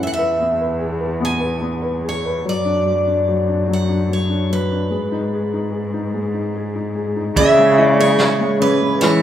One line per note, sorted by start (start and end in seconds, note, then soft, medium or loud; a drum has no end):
0.00 2.48 E2 medium
0.00 2.41 E3 soft
0.00 0.07 E5 medium
0.07 0.13 F#5 medium
0.14 1.24 E5 medium
0.18 0.60 B4 soft
0.40 1.19 B3 soft
0.61 0.99 B4 soft
0.79 2.01 G#4 soft
1.01 1.39 B4 soft
1.20 1.60 B3 medium
1.25 2.08 G#5 medium
1.40 1.81 B4 soft
1.61 2.41 B3 soft
1.82 2.24 B4 soft
2.02 2.43 G#4 soft
2.09 2.44 C#5 medium
2.25 2.45 B4 soft
2.45 4.93 F#2 medium
2.45 2.85 F#3 soft
2.45 3.66 D5 medium
2.65 3.05 D4 soft
2.86 3.27 F#3 soft
3.06 3.47 D4 soft
3.28 3.66 F#3 soft
3.48 3.87 D4 soft
3.68 4.08 F#3 medium
3.73 4.13 F#5 medium
3.89 4.28 D4 soft
4.09 4.49 F#3 soft
4.13 4.49 C#5 medium
4.29 4.70 D4 soft
4.50 4.90 F#3 soft
4.50 6.52 B4 medium
4.71 4.91 D4 soft
4.90 7.34 G#2 medium
4.90 6.12 G#3 soft
5.12 5.52 D#4 soft
5.33 5.71 G#4 soft
5.53 5.92 D#4 soft
5.72 6.54 G#4 soft
5.94 6.33 D#4 soft
6.14 7.33 G#3 soft
6.34 6.74 D#4 soft
6.55 6.94 G#4 soft
6.75 7.15 D#4 soft
6.95 7.35 G#4 soft
7.16 7.36 D#4 soft
7.36 8.63 C#3 medium
7.36 8.59 C#3 medium
7.36 8.60 E3 medium
7.36 8.19 G#4 medium
7.36 7.86 E5 medium
7.36 kick medium
7.36 closed hi-hat soft
7.57 7.98 G#3 soft
7.57 7.99 C#4 soft
7.78 8.40 G#3 medium
7.78 9.00 E4 soft
7.86 8.00 D5 medium
7.99 8.38 G#3 soft
7.99 8.81 C#4 medium
7.99 8.61 C#5 medium
8.18 9.22 G#4 soft
8.18 8.61 G#4 medium
8.18 snare medium
8.18 closed hi-hat soft
8.40 8.80 G#3 soft
8.40 9.01 G#3 medium
8.60 9.22 C#3 medium
8.60 9.22 E3 medium
8.60 9.22 G#4 medium
8.60 9.01 B4 medium
8.81 9.22 G#3 soft
8.81 9.22 C#4 soft
9.00 9.22 E3 medium
9.00 9.22 G#3 medium
9.00 9.22 E4 medium
9.00 9.22 C#5 medium
9.00 snare medium
9.00 closed hi-hat soft